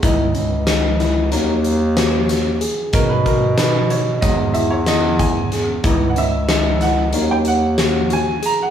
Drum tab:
HH |xxxxxxxxx|xxxxxxxxx|xxxxxxxxx|
SD |--ooo-oo-|--o-o-o-o|--oo--o--|
BD |o--------|oo--o--o-|o--------|